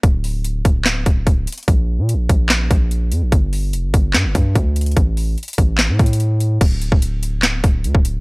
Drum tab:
CC |------------------------------------------------------------------------------------------------|------------------------------------------------------------------------------------------------|------------------------------------------------------------------------------------------------|------------------------------------------------------------------------------------------------|
HH |x-----------o-----------x-----------x-----------x-----------x-----------x-----------x--x--x--x--|x-----------------------x-----------x-----------x-----------x-----------x-----------x-----------|x-----------o-----------x-----------x-----------x-----------x-----------x-----------x--x--x--x--|x-----------o-----------x--x--x--x--x-----------x-----------x---x---x---x-----------x-----------|
CP |------------------------------------------------x-----------------------------------------------|------------------------------------------------x-----------------------------------------------|------------------------------------------------x-----------------------------------------------|------------------------------------------------x-----------------------------------------------|
SD |------------------------------------------------o-----------------------------------------------|------------------------------------------------o-----------------------------------------------|------------------------------------------------o-----------------------------------------------|------------------------------------------------o-----------------------------------------------|
BD |o-----------------------------------o-----------------------o-----------o-----------------------|o-----------------------------------o-----------------------o-----------------------------------|o-----------------------------------o-----------------------o-----------o-----------------------|o-----------------------------------o-----------------------o-----------------------------------|

CC |x-----------------------------------------------------------------------------------------------|
HH |x-----------x-----------x-----------x-----------x-----------x-----------x-----------x-----------|
CP |------------------------------------------------x-----------------------------------------------|
SD |------------------------------------------------o-----------------------------------------------|
BD |o-----------------o-----------------------------------------o-----------------o-----------------|